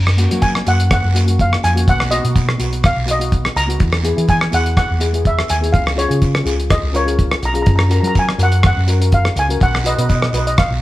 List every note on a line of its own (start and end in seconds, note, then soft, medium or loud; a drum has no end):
0.00 0.25 F#2 medium
0.00 0.44 A#5 medium
0.07 cross-stick medium
0.17 0.25 A#3 medium
0.17 0.26 C#4 medium
0.17 0.26 F#4 medium
0.17 closed hi-hat medium
0.29 0.61 F#3 medium
0.29 0.51 A#3 medium
0.29 0.52 C#4 soft
0.29 0.52 F#4 medium
0.29 closed hi-hat medium
0.42 0.64 G#5 medium
0.42 kick medium
0.42 closed hi-hat soft
0.42 short guiro medium
0.55 cross-stick medium
0.65 0.98 F#2 medium
0.65 0.95 A#3 medium
0.65 0.95 C#4 soft
0.65 0.96 F#4 medium
0.65 0.92 F#5 medium
0.65 closed hi-hat medium
0.65 short guiro medium
0.80 closed hi-hat medium
0.90 1.37 F#5 medium
0.90 kick loud
0.90 cross-stick medium
0.90 closed hi-hat medium
0.90 long guiro medium
1.04 1.54 F#2 medium
1.13 1.21 A#3 medium
1.13 1.22 C#4 medium
1.13 1.22 F#4 medium
1.13 closed hi-hat medium
1.13 short guiro medium
1.25 1.55 A#3 medium
1.25 1.55 C#4 medium
1.25 1.56 F#4 medium
1.25 closed hi-hat medium
1.39 1.62 F5 medium
1.39 kick medium
1.39 closed hi-hat medium
1.53 cross-stick medium
1.63 1.84 F2 medium
1.63 1.74 G#5 medium
1.63 closed hi-hat medium
1.63 short guiro medium
1.74 1.86 A#3 medium
1.74 1.86 C#4 soft
1.74 1.87 F#4 medium
1.74 closed hi-hat medium
1.88 2.19 B1 medium
1.88 2.00 F#5 medium
1.88 kick loud
1.88 closed hi-hat medium
1.88 long guiro medium
2.00 cross-stick medium
2.09 2.18 B3 medium
2.09 2.18 D#4 medium
2.09 2.19 F#4 medium
2.09 2.86 D#5 medium
2.09 closed hi-hat medium
2.22 2.54 B2 medium
2.22 2.44 B3 medium
2.22 2.45 D#4 medium
2.22 2.46 F#4 medium
2.22 closed hi-hat medium
2.36 kick medium
2.36 closed hi-hat medium
2.36 short guiro medium
2.49 cross-stick medium
2.58 2.91 B1 medium
2.58 2.88 B3 medium
2.58 2.88 D#4 medium
2.58 2.89 F#4 medium
2.58 closed hi-hat medium
2.58 short guiro medium
2.73 closed hi-hat soft
2.83 3.07 F5 medium
2.83 kick loud
2.83 cross-stick medium
2.83 closed hi-hat medium
2.83 long guiro medium
2.97 3.47 B1 medium
3.06 3.14 B3 medium
3.06 3.15 D#4 medium
3.06 3.15 F#4 medium
3.06 closed hi-hat medium
3.06 short guiro medium
3.11 3.54 D#5 medium
3.19 3.48 B3 medium
3.19 3.49 D#4 medium
3.19 3.49 F#4 medium
3.19 closed hi-hat medium
3.32 kick medium
3.32 closed hi-hat soft
3.45 cross-stick medium
3.56 3.77 C#2 medium
3.56 4.31 A#5 medium
3.56 closed hi-hat medium
3.56 short guiro medium
3.67 3.79 B3 medium
3.67 3.79 D#4 medium
3.67 3.80 F#4 medium
3.67 closed hi-hat medium
3.80 4.12 E2 loud
3.80 kick loud
3.80 closed hi-hat soft
3.80 long guiro medium
3.93 cross-stick medium
4.02 4.11 B3 medium
4.02 4.12 E4 medium
4.02 4.12 G#4 medium
4.02 closed hi-hat medium
4.15 4.47 E3 medium
4.15 4.38 B3 medium
4.15 4.38 E4 medium
4.15 4.39 G#4 medium
4.15 closed hi-hat medium
4.28 4.54 G#5 medium
4.28 kick medium
4.28 closed hi-hat medium
4.28 short guiro medium
4.41 cross-stick medium
4.51 4.84 E2 medium
4.51 4.81 B3 medium
4.51 4.81 E4 medium
4.51 4.82 G#4 medium
4.51 4.65 F#5 medium
4.51 closed hi-hat medium
4.51 short guiro medium
4.66 closed hi-hat medium
4.77 5.27 F#5 medium
4.77 kick loud
4.77 cross-stick medium
4.77 closed hi-hat medium
4.77 long guiro medium
4.90 5.41 E2 medium
4.99 5.08 B3 medium
4.99 5.08 E4 medium
4.99 5.09 G#4 medium
4.99 closed hi-hat medium
4.99 short guiro soft
5.13 5.42 B3 medium
5.13 5.43 E4 medium
5.13 5.43 G#4 medium
5.13 closed hi-hat medium
5.25 5.49 E5 medium
5.25 kick medium
5.25 closed hi-hat medium
5.39 cross-stick medium
5.48 5.70 D#2 medium
5.48 5.72 G#5 medium
5.48 closed hi-hat medium
5.48 short guiro medium
5.61 5.73 B3 medium
5.61 5.73 E4 medium
5.61 5.73 G#4 medium
5.61 closed hi-hat medium
5.73 6.05 C#2 medium
5.73 5.98 F5 medium
5.73 kick loud
5.73 closed hi-hat medium
5.73 long guiro medium
5.87 cross-stick medium
5.95 6.04 C#4 medium
5.95 6.05 F4 medium
5.95 6.05 G#4 medium
5.95 6.73 C#5 medium
5.95 closed hi-hat medium
6.08 6.40 C#3 medium
6.08 6.31 C#4 medium
6.08 6.31 F4 medium
6.08 6.32 G#4 medium
6.08 closed hi-hat medium
6.22 kick medium
6.22 closed hi-hat medium
6.22 short guiro medium
6.35 cross-stick medium
6.44 6.77 C#2 medium
6.44 6.74 C#4 medium
6.44 6.75 F4 medium
6.44 6.75 G#4 medium
6.44 closed hi-hat medium
6.44 short guiro medium
6.60 closed hi-hat soft
6.70 6.93 D#5 medium
6.70 kick loud
6.70 cross-stick medium
6.70 closed hi-hat medium
6.70 long guiro medium
6.83 7.34 C#2 medium
6.92 7.01 C#4 medium
6.92 7.02 F4 medium
6.92 7.02 A#4 medium
6.92 7.45 C#5 medium
6.92 closed hi-hat medium
6.92 short guiro medium
7.05 7.35 C#4 medium
7.05 7.35 F4 medium
7.05 7.36 G#4 medium
7.05 closed hi-hat medium
7.19 kick medium
7.19 closed hi-hat medium
7.32 cross-stick medium
7.42 7.63 B1 medium
7.42 7.52 A#5 medium
7.42 closed hi-hat medium
7.42 short guiro soft
7.53 7.66 C#4 medium
7.53 7.66 F4 medium
7.53 7.67 G#4 medium
7.53 7.60 A#5 medium
7.53 closed hi-hat medium
7.62 7.66 A#5 medium
7.62 closed hi-hat medium
7.67 7.98 F#2 medium
7.67 7.74 A#5 medium
7.67 kick loud
7.67 long guiro medium
7.76 7.82 A#5 medium
7.76 cross-stick medium
7.83 7.89 A#5 medium
7.89 7.98 C#4 medium
7.89 7.98 F#4 medium
7.89 7.99 A#4 medium
7.89 7.97 A#5 medium
7.89 closed hi-hat medium
8.00 8.34 F#3 medium
8.00 8.25 C#4 medium
8.00 8.25 F#4 medium
8.00 8.06 A#5 medium
8.00 closed hi-hat medium
8.04 8.26 A#4 medium
8.04 8.13 A#5 medium
8.15 8.42 G#5 medium
8.15 kick medium
8.15 closed hi-hat soft
8.15 short guiro medium
8.29 cross-stick medium
8.38 8.70 F#2 medium
8.38 8.68 C#4 medium
8.38 8.68 F#4 soft
8.38 8.69 A#4 medium
8.38 closed hi-hat medium
8.38 short guiro medium
8.43 8.64 F#5 medium
8.52 closed hi-hat soft
8.63 9.15 F#5 medium
8.63 kick loud
8.63 cross-stick medium
8.63 closed hi-hat medium
8.63 long guiro medium
8.77 9.27 F#2 medium
8.87 8.95 C#4 medium
8.87 8.96 F#4 medium
8.87 8.96 A#4 medium
8.87 closed hi-hat medium
8.87 short guiro medium
9.00 9.29 C#4 medium
9.00 9.30 F#4 medium
9.00 9.30 A#4 medium
9.00 closed hi-hat medium
9.12 9.38 F5 medium
9.12 kick medium
9.12 closed hi-hat medium
9.25 cross-stick medium
9.36 9.57 C#2 medium
9.36 9.60 G#5 medium
9.36 closed hi-hat medium
9.36 short guiro medium
9.49 9.60 C#4 medium
9.49 9.61 F#4 medium
9.49 9.61 A#4 medium
9.49 closed hi-hat medium
9.61 9.93 B1 medium
9.61 9.73 F#5 medium
9.61 kick loud
9.61 closed hi-hat medium
9.61 long guiro medium
9.75 cross-stick medium
9.84 9.92 D#4 medium
9.84 9.93 F#4 medium
9.84 9.93 B4 medium
9.84 9.93 D#5 medium
9.84 closed hi-hat medium
9.95 10.28 B2 medium
9.95 10.19 D#4 medium
9.95 10.19 F#4 medium
9.95 10.20 B4 medium
9.95 9.99 D#5 medium
9.95 closed hi-hat medium
10.00 10.08 D#5 medium
10.09 10.14 D#5 soft
10.09 kick medium
10.09 closed hi-hat medium
10.09 short guiro medium
10.15 10.22 D#5 medium
10.22 10.29 D#5 soft
10.22 cross-stick medium
10.31 10.65 B1 medium
10.31 10.62 D#4 medium
10.31 10.63 F#4 medium
10.31 10.63 B4 medium
10.31 10.37 D#5 medium
10.31 closed hi-hat medium
10.31 short guiro medium
10.38 10.46 D#5 medium
10.47 10.54 D#5 medium
10.47 closed hi-hat medium
10.57 10.82 F5 medium
10.57 kick loud
10.57 cross-stick medium
10.57 closed hi-hat medium
10.57 long guiro medium
10.71 10.82 B1 medium